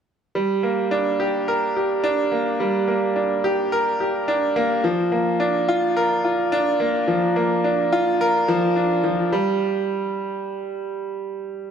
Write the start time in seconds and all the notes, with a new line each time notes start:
0.35 G3
0.63 A#3
0.91 D4
1.20 G4
1.48 A#4
1.76 G4
2.04 D4
2.32 A#3
2.60 G3
2.88 A#3
3.16 D4
3.44 G4
3.72 A#4
4.00 G4
4.28 D4
4.56 A#3
4.84 F3
5.12 A#3
5.40 D4
5.68 F4
5.97 A#4
6.24 F4
6.52 D4
6.80 A#3
7.08 F3
7.36 A#3
7.64 D4
7.92 F4
8.21 A#4
8.48 F3
8.76 D4
9.04 F3
9.32 G3